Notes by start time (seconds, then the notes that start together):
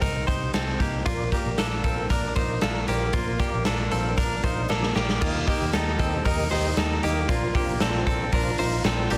0.01 C2 D#3 C4 D#4 G4 A#4, kick, closed hi-hat
0.27 C2 C4 D#4 G4 C5, kick, closed hi-hat
0.54 C2 C3 D#3 C4 D#4 G4 A4, snare, closed hi-hat
0.80 C2 A#3 C4 D#4 G4, kick, closed hi-hat
1.05 A#1 A#2 F3 A#3 D4 F4 A#4 D5, kick, closed hi-hat
1.32 A#3 D4 F4 G4 A#4 D5, kick, closed hi-hat
1.46 A#1
1.58 A#1 A#2 F3 A#3 D4 F4 A4 A#4 D5, snare, closed hi-hat
1.84 A#1 A#3 C4 D4 F4 A4 A#4 F5, kick, closed hi-hat
2.09 A#1 F3 A#3 D4 F4 A#4 D5, kick, closed hi-hat
2.35 A#1 A#3 D4 D#4 F4 A#4 C5 D5, kick, closed hi-hat
2.61 A#1 A#2 F3 A#3 D4 F4 A4 A#4 F5, snare, closed hi-hat
2.87 A#1 A#3 D4 F4 G4 A#4 C5, closed hi-hat
3.13 A#1 A#2 F3 A#3 D4 F4 A#4 C5, kick, closed hi-hat
3.39 A#3 D4 F4 G4 A#4 D5, kick, closed hi-hat
3.54 A#1
3.65 A#1 A#2 F3 A#3 D4 F4 A4 A#4 D5, snare, closed hi-hat
3.91 A#1 A#3 C4 D4 F4 A4 A#4 F5, closed hi-hat
4.17 A#1 F3 A#3 D4 F4 A#4 D5, kick, closed hi-hat
4.43 A#1 A#3 D4 D#4 F4 A#4 C5 F5, kick, closed hi-hat
4.68 A#1 A#2 F3 A#3 D4 F4 A4 A#4 D5, snare
4.83 snare
4.95 A#1 A#3 D4 F4 G4 A#4 D5, snare
5.09 snare
5.21 D#2 D#3 A#3 D#4 F4 G4 A#4 D#5, kick, crash
5.46 A#3 D#4 G4 A#4 D#5, kick, hi-hat pedal, open hi-hat
5.61 D#2
5.73 D#2 D#3 A#3 D#4 G4 A4 A#4 D#5, snare, hi-hat pedal, open hi-hat
5.99 D#2 A#3 C4 D#4 G4 A4 A#4 D#5, kick, hi-hat pedal, open hi-hat
6.25 D#2 D#3 A#3 D#4 G4 A#4 D#5, kick, hi-hat pedal, open hi-hat
6.50 D#2 A#3 D#4 G4 A#4 C5 D#5, snare, hi-hat pedal, open hi-hat
6.77 D#2 D#3 A#3 D#4 G4 A4 A#4 D#5, snare, hi-hat pedal, open hi-hat
7.03 D#2 A#3 D#4 G4 A#4 D#5, hi-hat pedal, open hi-hat
7.29 A#1 A#2 F3 A#3 C4 D4 F4 A#4 C5, kick, hi-hat pedal, open hi-hat
7.55 A#3 C4 D4 F4 G4 A#4 C5, kick, hi-hat pedal, open hi-hat
7.69 A#1
7.80 A#1 A#2 F3 C4 D4 F4 A4 A#4 C5, snare, hi-hat pedal, open hi-hat
8.07 A#1 C4 D4 F4 A4 A#4 C5, kick, hi-hat pedal, open hi-hat
8.32 A#1 F3 C4 D4 F4 A#4 C5, kick, hi-hat pedal, open hi-hat
8.58 A#1 C4 D4 D#4 F4 A#4 C5 F5, hi-hat pedal, open hi-hat
8.84 A#1 A#2 F3 C4 D4 F4 A4 A#4 C5 G5, snare, hi-hat pedal, open hi-hat
9.10 A#1 A#3 C4 D4 F4 G4 A#4 D5 A5, hi-hat pedal, open hi-hat